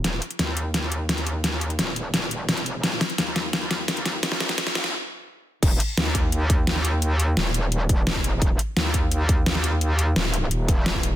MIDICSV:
0, 0, Header, 1, 3, 480
1, 0, Start_track
1, 0, Tempo, 348837
1, 62, Time_signature, 4, 2, 24, 8
1, 15353, End_track
2, 0, Start_track
2, 0, Title_t, "Wobble bass"
2, 0, Program_c, 0, 39
2, 59, Note_on_c, 0, 27, 93
2, 281, Note_off_c, 0, 27, 0
2, 540, Note_on_c, 0, 39, 91
2, 2441, Note_off_c, 0, 39, 0
2, 2460, Note_on_c, 0, 27, 97
2, 3641, Note_off_c, 0, 27, 0
2, 3660, Note_on_c, 0, 28, 97
2, 3881, Note_off_c, 0, 28, 0
2, 3899, Note_on_c, 0, 27, 93
2, 4121, Note_off_c, 0, 27, 0
2, 4380, Note_on_c, 0, 39, 95
2, 6282, Note_off_c, 0, 39, 0
2, 6539, Note_on_c, 0, 34, 98
2, 6780, Note_off_c, 0, 34, 0
2, 7740, Note_on_c, 0, 27, 91
2, 7962, Note_off_c, 0, 27, 0
2, 8219, Note_on_c, 0, 39, 92
2, 10121, Note_off_c, 0, 39, 0
2, 10140, Note_on_c, 0, 27, 94
2, 11322, Note_off_c, 0, 27, 0
2, 11340, Note_on_c, 0, 28, 93
2, 11561, Note_off_c, 0, 28, 0
2, 11581, Note_on_c, 0, 27, 92
2, 11802, Note_off_c, 0, 27, 0
2, 12061, Note_on_c, 0, 39, 96
2, 13962, Note_off_c, 0, 39, 0
2, 13980, Note_on_c, 0, 27, 95
2, 14442, Note_off_c, 0, 27, 0
2, 14460, Note_on_c, 0, 27, 102
2, 15353, Note_off_c, 0, 27, 0
2, 15353, End_track
3, 0, Start_track
3, 0, Title_t, "Drums"
3, 60, Note_on_c, 9, 38, 50
3, 60, Note_on_c, 9, 42, 92
3, 198, Note_off_c, 9, 38, 0
3, 198, Note_off_c, 9, 42, 0
3, 300, Note_on_c, 9, 42, 65
3, 420, Note_off_c, 9, 42, 0
3, 420, Note_on_c, 9, 42, 39
3, 539, Note_off_c, 9, 42, 0
3, 539, Note_on_c, 9, 38, 52
3, 539, Note_on_c, 9, 42, 95
3, 677, Note_off_c, 9, 38, 0
3, 677, Note_off_c, 9, 42, 0
3, 780, Note_on_c, 9, 42, 69
3, 918, Note_off_c, 9, 42, 0
3, 1021, Note_on_c, 9, 38, 51
3, 1021, Note_on_c, 9, 42, 91
3, 1158, Note_off_c, 9, 38, 0
3, 1158, Note_off_c, 9, 42, 0
3, 1261, Note_on_c, 9, 42, 69
3, 1398, Note_off_c, 9, 42, 0
3, 1501, Note_on_c, 9, 38, 56
3, 1501, Note_on_c, 9, 42, 95
3, 1621, Note_off_c, 9, 42, 0
3, 1621, Note_on_c, 9, 42, 38
3, 1639, Note_off_c, 9, 38, 0
3, 1741, Note_off_c, 9, 42, 0
3, 1741, Note_on_c, 9, 42, 66
3, 1879, Note_off_c, 9, 42, 0
3, 1981, Note_on_c, 9, 38, 60
3, 1981, Note_on_c, 9, 42, 99
3, 2118, Note_off_c, 9, 38, 0
3, 2118, Note_off_c, 9, 42, 0
3, 2220, Note_on_c, 9, 42, 64
3, 2341, Note_off_c, 9, 42, 0
3, 2341, Note_on_c, 9, 42, 39
3, 2461, Note_off_c, 9, 42, 0
3, 2461, Note_on_c, 9, 38, 61
3, 2461, Note_on_c, 9, 42, 95
3, 2598, Note_off_c, 9, 38, 0
3, 2598, Note_off_c, 9, 42, 0
3, 2701, Note_on_c, 9, 42, 70
3, 2838, Note_off_c, 9, 42, 0
3, 2940, Note_on_c, 9, 38, 66
3, 2940, Note_on_c, 9, 42, 92
3, 3078, Note_off_c, 9, 38, 0
3, 3078, Note_off_c, 9, 42, 0
3, 3180, Note_on_c, 9, 42, 68
3, 3318, Note_off_c, 9, 42, 0
3, 3421, Note_on_c, 9, 38, 68
3, 3421, Note_on_c, 9, 42, 96
3, 3542, Note_off_c, 9, 42, 0
3, 3542, Note_on_c, 9, 42, 40
3, 3558, Note_off_c, 9, 38, 0
3, 3662, Note_off_c, 9, 42, 0
3, 3662, Note_on_c, 9, 42, 70
3, 3799, Note_off_c, 9, 42, 0
3, 3901, Note_on_c, 9, 38, 75
3, 3901, Note_on_c, 9, 42, 93
3, 4039, Note_off_c, 9, 38, 0
3, 4039, Note_off_c, 9, 42, 0
3, 4141, Note_on_c, 9, 38, 75
3, 4141, Note_on_c, 9, 42, 65
3, 4260, Note_off_c, 9, 42, 0
3, 4260, Note_on_c, 9, 42, 38
3, 4278, Note_off_c, 9, 38, 0
3, 4380, Note_off_c, 9, 42, 0
3, 4380, Note_on_c, 9, 38, 79
3, 4380, Note_on_c, 9, 42, 100
3, 4518, Note_off_c, 9, 38, 0
3, 4518, Note_off_c, 9, 42, 0
3, 4621, Note_on_c, 9, 38, 85
3, 4621, Note_on_c, 9, 42, 67
3, 4759, Note_off_c, 9, 38, 0
3, 4759, Note_off_c, 9, 42, 0
3, 4861, Note_on_c, 9, 38, 83
3, 4861, Note_on_c, 9, 42, 94
3, 4998, Note_off_c, 9, 38, 0
3, 4998, Note_off_c, 9, 42, 0
3, 5100, Note_on_c, 9, 38, 89
3, 5100, Note_on_c, 9, 42, 68
3, 5238, Note_off_c, 9, 38, 0
3, 5238, Note_off_c, 9, 42, 0
3, 5341, Note_on_c, 9, 38, 85
3, 5341, Note_on_c, 9, 42, 92
3, 5461, Note_off_c, 9, 42, 0
3, 5461, Note_on_c, 9, 42, 40
3, 5479, Note_off_c, 9, 38, 0
3, 5580, Note_off_c, 9, 42, 0
3, 5580, Note_on_c, 9, 38, 88
3, 5580, Note_on_c, 9, 42, 68
3, 5718, Note_off_c, 9, 38, 0
3, 5718, Note_off_c, 9, 42, 0
3, 5820, Note_on_c, 9, 38, 98
3, 5820, Note_on_c, 9, 42, 97
3, 5940, Note_off_c, 9, 38, 0
3, 5940, Note_on_c, 9, 38, 83
3, 5958, Note_off_c, 9, 42, 0
3, 6061, Note_off_c, 9, 38, 0
3, 6061, Note_on_c, 9, 38, 93
3, 6061, Note_on_c, 9, 42, 60
3, 6181, Note_off_c, 9, 38, 0
3, 6181, Note_off_c, 9, 42, 0
3, 6181, Note_on_c, 9, 38, 86
3, 6181, Note_on_c, 9, 42, 37
3, 6301, Note_off_c, 9, 38, 0
3, 6301, Note_off_c, 9, 42, 0
3, 6301, Note_on_c, 9, 38, 99
3, 6301, Note_on_c, 9, 42, 96
3, 6421, Note_off_c, 9, 38, 0
3, 6421, Note_off_c, 9, 42, 0
3, 6421, Note_on_c, 9, 38, 84
3, 6421, Note_on_c, 9, 42, 37
3, 6541, Note_off_c, 9, 38, 0
3, 6541, Note_off_c, 9, 42, 0
3, 6541, Note_on_c, 9, 38, 102
3, 6541, Note_on_c, 9, 42, 66
3, 6660, Note_off_c, 9, 38, 0
3, 6660, Note_on_c, 9, 38, 88
3, 6679, Note_off_c, 9, 42, 0
3, 6798, Note_off_c, 9, 38, 0
3, 7741, Note_on_c, 9, 36, 125
3, 7742, Note_on_c, 9, 42, 84
3, 7742, Note_on_c, 9, 49, 110
3, 7878, Note_off_c, 9, 36, 0
3, 7879, Note_off_c, 9, 42, 0
3, 7879, Note_off_c, 9, 49, 0
3, 7981, Note_on_c, 9, 42, 97
3, 8119, Note_off_c, 9, 42, 0
3, 8221, Note_on_c, 9, 38, 122
3, 8221, Note_on_c, 9, 42, 89
3, 8359, Note_off_c, 9, 38, 0
3, 8359, Note_off_c, 9, 42, 0
3, 8460, Note_on_c, 9, 42, 99
3, 8461, Note_on_c, 9, 36, 61
3, 8598, Note_off_c, 9, 42, 0
3, 8599, Note_off_c, 9, 36, 0
3, 8701, Note_on_c, 9, 42, 85
3, 8839, Note_off_c, 9, 42, 0
3, 8941, Note_on_c, 9, 36, 112
3, 8941, Note_on_c, 9, 42, 101
3, 9079, Note_off_c, 9, 36, 0
3, 9079, Note_off_c, 9, 42, 0
3, 9181, Note_on_c, 9, 38, 120
3, 9181, Note_on_c, 9, 42, 79
3, 9300, Note_off_c, 9, 38, 0
3, 9300, Note_on_c, 9, 38, 38
3, 9319, Note_off_c, 9, 42, 0
3, 9420, Note_on_c, 9, 42, 97
3, 9438, Note_off_c, 9, 38, 0
3, 9558, Note_off_c, 9, 42, 0
3, 9660, Note_on_c, 9, 42, 84
3, 9798, Note_off_c, 9, 42, 0
3, 9901, Note_on_c, 9, 42, 90
3, 10038, Note_off_c, 9, 42, 0
3, 10141, Note_on_c, 9, 38, 127
3, 10141, Note_on_c, 9, 42, 86
3, 10278, Note_off_c, 9, 38, 0
3, 10278, Note_off_c, 9, 42, 0
3, 10381, Note_on_c, 9, 42, 102
3, 10518, Note_off_c, 9, 42, 0
3, 10621, Note_on_c, 9, 42, 84
3, 10759, Note_off_c, 9, 42, 0
3, 10861, Note_on_c, 9, 36, 108
3, 10861, Note_on_c, 9, 42, 100
3, 10999, Note_off_c, 9, 36, 0
3, 10999, Note_off_c, 9, 42, 0
3, 11102, Note_on_c, 9, 38, 127
3, 11102, Note_on_c, 9, 42, 85
3, 11221, Note_on_c, 9, 36, 70
3, 11239, Note_off_c, 9, 38, 0
3, 11239, Note_off_c, 9, 42, 0
3, 11342, Note_on_c, 9, 42, 96
3, 11359, Note_off_c, 9, 36, 0
3, 11479, Note_off_c, 9, 42, 0
3, 11581, Note_on_c, 9, 36, 127
3, 11582, Note_on_c, 9, 42, 86
3, 11719, Note_off_c, 9, 36, 0
3, 11719, Note_off_c, 9, 42, 0
3, 11822, Note_on_c, 9, 42, 95
3, 11959, Note_off_c, 9, 42, 0
3, 12062, Note_on_c, 9, 38, 127
3, 12062, Note_on_c, 9, 42, 80
3, 12199, Note_off_c, 9, 38, 0
3, 12199, Note_off_c, 9, 42, 0
3, 12302, Note_on_c, 9, 36, 65
3, 12302, Note_on_c, 9, 42, 99
3, 12439, Note_off_c, 9, 36, 0
3, 12439, Note_off_c, 9, 42, 0
3, 12542, Note_on_c, 9, 42, 86
3, 12680, Note_off_c, 9, 42, 0
3, 12782, Note_on_c, 9, 36, 113
3, 12782, Note_on_c, 9, 42, 99
3, 12920, Note_off_c, 9, 36, 0
3, 12920, Note_off_c, 9, 42, 0
3, 13022, Note_on_c, 9, 38, 123
3, 13022, Note_on_c, 9, 42, 80
3, 13143, Note_off_c, 9, 38, 0
3, 13143, Note_on_c, 9, 38, 42
3, 13160, Note_off_c, 9, 42, 0
3, 13262, Note_on_c, 9, 42, 97
3, 13281, Note_off_c, 9, 38, 0
3, 13400, Note_off_c, 9, 42, 0
3, 13503, Note_on_c, 9, 42, 81
3, 13640, Note_off_c, 9, 42, 0
3, 13743, Note_on_c, 9, 42, 91
3, 13880, Note_off_c, 9, 42, 0
3, 13982, Note_on_c, 9, 38, 127
3, 13982, Note_on_c, 9, 42, 79
3, 14120, Note_off_c, 9, 38, 0
3, 14120, Note_off_c, 9, 42, 0
3, 14222, Note_on_c, 9, 42, 92
3, 14359, Note_off_c, 9, 42, 0
3, 14462, Note_on_c, 9, 42, 81
3, 14600, Note_off_c, 9, 42, 0
3, 14702, Note_on_c, 9, 36, 110
3, 14703, Note_on_c, 9, 42, 96
3, 14839, Note_off_c, 9, 36, 0
3, 14840, Note_off_c, 9, 42, 0
3, 14943, Note_on_c, 9, 38, 127
3, 14943, Note_on_c, 9, 42, 80
3, 15062, Note_on_c, 9, 36, 66
3, 15080, Note_off_c, 9, 38, 0
3, 15080, Note_off_c, 9, 42, 0
3, 15183, Note_on_c, 9, 42, 95
3, 15200, Note_off_c, 9, 36, 0
3, 15320, Note_off_c, 9, 42, 0
3, 15353, End_track
0, 0, End_of_file